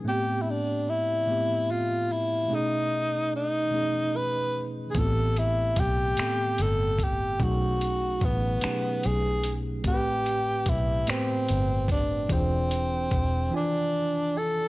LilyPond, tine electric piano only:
\new Staff \with { instrumentName = "Tine electric piano" } { \time 6/8 \key a \minor \tempo 4. = 49 <a, a b c' g'>4. <a, a b c' g'>4. | <b, a cis' dis' gis'>4. <b, a cis' dis' gis'>4. | <a, a b c' f' g'>4. <a, a b c' a'>4. | <b, fis a cis' dis' gis'>4. <b, fis a cis' dis' g' gis'>4. |
<a, a c' g' a' b'>4. <a, a b c' g' b'>4. | <e d' f' gis' c''>4. <e d' f' d'' gis''>4. | }